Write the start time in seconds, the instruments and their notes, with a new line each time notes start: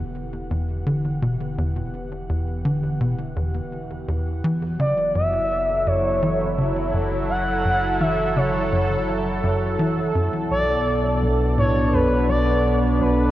Already playing: sub bass E1, analog synth pad E3 B3 G4 F#5
0.51 analog synth bass E2
0.86 analog synth bass D3
1.22 analog synth bass B2
1.58 analog synth bass E2
2.29 analog synth bass E2
2.65 analog synth bass D3
3.01 analog synth bass B2
3.36 analog synth bass E2
4.08 analog synth bass E2
4.43 sub bass F#1, analog synth bass E3, analog synth pad F#3
4.73 analog synth pad E4
4.79 analog synth bass C#3, analog synth lead D5
5.15 analog synth bass F#2, analog synth lead E5
5.32 analog synth pad A4
5.87 analog synth bass F#2, analog synth lead C#5
6.22 analog synth bass E3
6.58 analog synth bass C#3
6.94 analog synth bass F#2
7.29 analog synth lead F#5
7.65 analog synth bass F#2
8.01 analog synth bass E3, analog synth lead E5
8.36 analog synth bass C#3, analog synth lead C#5
8.72 analog synth bass F#2
9.44 analog synth bass F#2
9.79 analog synth bass E3
10.15 sub bass B1, analog synth bass F#2, analog synth pad B2
10.45 analog synth pad B3
10.51 analog synth bass B1, analog synth lead D5
10.99 analog synth pad D4
11.22 analog synth bass B1
11.58 analog synth bass A2, analog synth lead C#5
11.94 analog synth bass F#2, analog synth lead B4
12.29 analog synth bass B1, analog synth lead D5
13.01 analog synth bass B1, analog synth lead B4